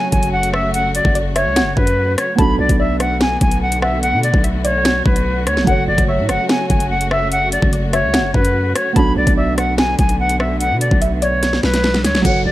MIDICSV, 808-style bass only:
0, 0, Header, 1, 2, 480
1, 0, Start_track
1, 0, Tempo, 410959
1, 867, Time_signature, 4, 2, 24, 8
1, 14621, End_track
2, 0, Start_track
2, 0, Title_t, "808-style bass"
2, 0, Program_c, 0, 38
2, 146, Note_on_c, 0, 30, 99
2, 1183, Note_off_c, 0, 30, 0
2, 1226, Note_on_c, 0, 30, 113
2, 1706, Note_on_c, 0, 37, 101
2, 1723, Note_off_c, 0, 30, 0
2, 1887, Note_on_c, 0, 30, 104
2, 1904, Note_off_c, 0, 37, 0
2, 2057, Note_off_c, 0, 30, 0
2, 2065, Note_on_c, 0, 42, 105
2, 2527, Note_off_c, 0, 42, 0
2, 2786, Note_on_c, 0, 35, 118
2, 3016, Note_off_c, 0, 35, 0
2, 3025, Note_on_c, 0, 35, 105
2, 3141, Note_off_c, 0, 35, 0
2, 3146, Note_on_c, 0, 35, 104
2, 3952, Note_off_c, 0, 35, 0
2, 3985, Note_on_c, 0, 35, 102
2, 4824, Note_on_c, 0, 47, 103
2, 4842, Note_off_c, 0, 35, 0
2, 5053, Note_off_c, 0, 47, 0
2, 5066, Note_on_c, 0, 35, 105
2, 5872, Note_off_c, 0, 35, 0
2, 5906, Note_on_c, 0, 35, 106
2, 6386, Note_on_c, 0, 38, 99
2, 6403, Note_off_c, 0, 35, 0
2, 6505, Note_on_c, 0, 35, 101
2, 6523, Note_off_c, 0, 38, 0
2, 6620, Note_off_c, 0, 35, 0
2, 6625, Note_on_c, 0, 30, 114
2, 6856, Note_off_c, 0, 30, 0
2, 6865, Note_on_c, 0, 30, 106
2, 6981, Note_off_c, 0, 30, 0
2, 6986, Note_on_c, 0, 30, 110
2, 7226, Note_on_c, 0, 45, 102
2, 7244, Note_off_c, 0, 30, 0
2, 7346, Note_on_c, 0, 30, 102
2, 7364, Note_off_c, 0, 45, 0
2, 7460, Note_off_c, 0, 30, 0
2, 7825, Note_on_c, 0, 30, 104
2, 8863, Note_off_c, 0, 30, 0
2, 8906, Note_on_c, 0, 30, 112
2, 9385, Note_on_c, 0, 37, 97
2, 9403, Note_off_c, 0, 30, 0
2, 9565, Note_on_c, 0, 30, 99
2, 9582, Note_off_c, 0, 37, 0
2, 9736, Note_off_c, 0, 30, 0
2, 9746, Note_on_c, 0, 42, 105
2, 10207, Note_off_c, 0, 42, 0
2, 10466, Note_on_c, 0, 35, 115
2, 10696, Note_off_c, 0, 35, 0
2, 10707, Note_on_c, 0, 35, 104
2, 10822, Note_off_c, 0, 35, 0
2, 10827, Note_on_c, 0, 35, 107
2, 11633, Note_off_c, 0, 35, 0
2, 11666, Note_on_c, 0, 35, 106
2, 12507, Note_on_c, 0, 47, 100
2, 12524, Note_off_c, 0, 35, 0
2, 12734, Note_off_c, 0, 47, 0
2, 12747, Note_on_c, 0, 35, 105
2, 13553, Note_off_c, 0, 35, 0
2, 13587, Note_on_c, 0, 35, 103
2, 14067, Note_on_c, 0, 38, 100
2, 14085, Note_off_c, 0, 35, 0
2, 14188, Note_on_c, 0, 35, 98
2, 14205, Note_off_c, 0, 38, 0
2, 14301, Note_off_c, 0, 35, 0
2, 14308, Note_on_c, 0, 30, 110
2, 14537, Note_off_c, 0, 30, 0
2, 14548, Note_on_c, 0, 30, 104
2, 14621, Note_off_c, 0, 30, 0
2, 14621, End_track
0, 0, End_of_file